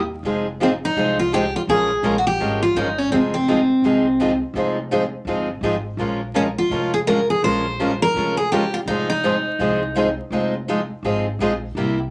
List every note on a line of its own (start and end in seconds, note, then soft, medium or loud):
0.00 0.22 D#2 medium
0.23 0.81 F1 medium
0.23 0.45 F3 medium
0.23 0.45 G#3 medium
0.23 0.45 C4 medium
0.23 0.45 D#4 medium
0.23 0.45 F4 medium
0.23 0.46 G#4 medium
0.23 0.46 C5 medium
0.61 0.71 F3 medium
0.61 0.71 G#3 medium
0.61 0.71 C4 medium
0.61 0.68 C4 medium
0.61 0.71 D#4 medium
0.61 0.72 F4 medium
0.61 0.72 G#4 medium
0.61 0.72 C5 medium
0.85 1.17 D#4 medium
0.95 1.53 C2 medium
0.95 1.17 F3 medium
0.95 1.17 G#3 medium
0.95 1.17 C4 medium
0.95 1.17 D#4 medium
0.95 1.17 F4 medium
0.95 1.17 G#4 medium
0.95 1.18 C5 medium
1.19 1.33 F4 medium
1.32 1.43 F3 medium
1.32 1.44 G#3 medium
1.32 1.43 C4 medium
1.32 1.44 D#4 medium
1.32 1.44 F4 medium
1.32 1.55 G4 medium
1.32 1.43 G#4 medium
1.32 1.44 C5 medium
1.56 1.61 F4 medium
1.67 1.96 A#1 medium
1.67 1.89 F3 medium
1.67 1.89 G#3 medium
1.67 1.89 C#4 medium
1.67 1.89 F4 medium
1.67 2.18 G#4 medium
1.67 1.89 A#4 medium
2.03 2.33 A#1 medium
2.03 2.15 F3 medium
2.03 2.15 G#3 medium
2.03 2.15 C#4 medium
2.03 2.15 F4 medium
2.03 2.15 A#4 medium
2.18 2.26 F#4 medium
2.27 2.62 G4 medium
2.39 2.69 G#1 medium
2.39 2.60 F3 medium
2.39 2.61 G#3 medium
2.39 2.61 C#4 medium
2.39 2.61 F4 medium
2.39 2.61 A#4 medium
2.62 2.76 F4 medium
2.75 3.05 G1 medium
2.75 2.87 F3 medium
2.75 2.87 G#3 medium
2.75 2.87 C#4 medium
2.75 2.98 D#4 medium
2.75 2.87 F4 medium
2.75 2.87 A#4 medium
2.98 3.11 C#4 medium
3.10 3.68 F1 medium
3.10 3.32 F3 medium
3.10 3.33 G#3 medium
3.10 3.18 C4 medium
3.10 3.33 C4 medium
3.10 3.33 D#4 medium
3.10 3.33 F4 medium
3.10 3.33 G#4 medium
3.10 3.33 C5 medium
3.34 4.37 C4 medium
3.48 3.59 F3 medium
3.48 3.59 G#3 medium
3.48 3.59 C4 medium
3.48 3.59 D#4 medium
3.48 3.59 F4 medium
3.48 3.59 G#4 medium
3.48 3.59 C5 medium
3.82 4.40 C2 medium
3.82 4.04 F3 medium
3.82 4.04 G#3 medium
3.82 4.05 C4 medium
3.82 4.05 D#4 medium
3.82 4.05 F4 medium
3.82 4.05 G#4 medium
3.82 4.05 C5 medium
4.20 4.30 F3 medium
4.20 4.31 G#3 medium
4.20 4.31 C4 medium
4.20 4.31 D#4 medium
4.20 4.31 F4 medium
4.20 4.31 G#4 medium
4.20 4.31 C5 medium
4.54 5.12 F1 medium
4.54 4.76 F3 medium
4.54 4.76 G#3 medium
4.54 4.76 C4 medium
4.54 4.77 D#4 medium
4.54 4.77 F4 medium
4.54 4.77 G#4 medium
4.54 4.77 C5 medium
4.91 5.02 F3 medium
4.91 5.02 G#3 medium
4.91 5.03 C4 medium
4.91 5.02 D#4 medium
4.91 5.02 F4 medium
4.91 5.03 G#4 medium
4.91 5.02 C5 medium
5.25 5.56 G1 medium
5.25 5.48 F3 medium
5.25 5.48 G#3 medium
5.25 5.48 C4 medium
5.25 5.48 D#4 medium
5.25 5.48 F4 medium
5.25 5.48 G#4 medium
5.25 5.49 C5 medium
5.61 5.92 G#1 medium
5.61 5.74 F3 medium
5.61 5.74 G#3 medium
5.61 5.74 C4 medium
5.61 5.74 D#4 medium
5.61 5.75 F4 medium
5.61 5.74 G#4 medium
5.61 5.75 C5 medium
5.97 6.55 A#1 medium
5.97 6.20 F3 medium
5.97 6.20 G#3 medium
5.97 6.20 C#4 medium
5.97 6.20 F4 medium
5.97 6.20 A#4 medium
6.35 6.46 F3 medium
6.35 6.46 G#3 medium
6.35 6.46 C#4 medium
6.35 6.42 C#4 medium
6.35 6.46 F4 medium
6.35 6.46 A#4 medium
6.58 6.93 F4 medium
6.70 7.28 F1 medium
6.70 6.92 F3 medium
6.70 6.92 G#3 medium
6.70 6.92 C#4 medium
6.70 6.92 F4 medium
6.70 6.93 A#4 medium
6.94 6.99 G#4 medium
7.07 7.18 F3 medium
7.07 7.19 G#3 medium
7.07 7.19 C#4 medium
7.07 7.19 F4 medium
7.07 7.28 A#4 medium
7.07 7.19 A#4 medium
7.30 7.44 G#4 medium
7.43 8.00 A#1 medium
7.43 7.65 F3 medium
7.43 7.65 G#3 medium
7.43 7.65 C#4 medium
7.43 7.65 F4 medium
7.43 7.65 A#4 medium
7.43 8.02 C5 medium
7.80 7.91 F3 medium
7.80 7.91 G#3 medium
7.80 7.91 C#4 medium
7.80 7.91 F4 medium
7.80 7.91 A#4 medium
8.02 8.37 A#4 loud
8.14 8.72 F1 medium
8.14 8.37 F3 medium
8.14 8.37 G#3 medium
8.14 8.37 C#4 medium
8.14 8.37 F4 medium
8.14 8.37 A#4 medium
8.37 8.51 G#4 medium
8.52 8.63 F3 medium
8.52 8.63 G#3 medium
8.52 8.63 C#4 medium
8.52 8.63 F4 medium
8.52 8.74 G4 medium
8.52 8.64 A#4 medium
8.74 8.79 F4 medium
8.86 9.44 F1 medium
8.86 9.09 F3 medium
8.86 9.09 G#3 medium
8.86 9.09 C4 medium
8.86 9.08 D#4 medium
8.86 9.09 D#4 medium
8.86 9.09 F4 medium
8.86 9.10 G#4 medium
8.86 9.09 C5 medium
9.10 10.14 D#4 medium
9.23 9.35 F3 medium
9.23 9.35 G#3 medium
9.23 9.35 C4 medium
9.23 9.35 D#4 medium
9.23 9.35 F4 medium
9.23 9.36 G#4 medium
9.23 9.35 C5 medium
9.59 10.17 C2 medium
9.59 9.80 F3 medium
9.59 9.81 G#3 medium
9.59 9.81 C4 medium
9.59 9.81 D#4 medium
9.59 9.81 F4 medium
9.59 9.81 G#4 medium
9.59 9.81 C5 medium
9.95 10.07 F3 medium
9.95 10.07 G#3 medium
9.95 10.07 C4 medium
9.95 10.07 D#4 medium
9.95 10.07 F4 medium
9.95 10.08 G#4 medium
9.95 10.07 C5 medium
10.30 10.89 F1 medium
10.30 10.53 F3 medium
10.30 10.53 G#3 medium
10.30 10.53 C4 medium
10.30 10.53 D#4 medium
10.30 10.53 F4 medium
10.30 10.53 G#4 medium
10.30 10.54 C5 medium
10.68 10.79 F3 medium
10.68 10.79 G#3 medium
10.68 10.79 C4 medium
10.68 10.79 D#4 medium
10.68 10.80 F4 medium
10.68 10.80 G#4 medium
10.68 10.80 C5 medium
11.03 11.34 G#1 medium
11.03 11.25 F3 medium
11.03 11.25 G#3 medium
11.03 11.25 C4 medium
11.03 11.25 D#4 medium
11.03 11.25 F4 medium
11.03 11.26 G#4 medium
11.03 11.26 C5 medium
11.39 11.70 A#1 medium
11.39 11.51 F3 medium
11.39 11.52 G#3 medium
11.39 11.52 C4 medium
11.39 11.52 D#4 medium
11.39 11.52 F4 medium
11.39 11.52 G#4 medium
11.39 11.52 C5 medium
11.75 12.10 C2 medium
11.75 11.97 C3 medium
11.75 11.98 G3 medium
11.75 11.98 A#3 medium
11.75 11.98 E4 medium
11.75 11.98 G4 medium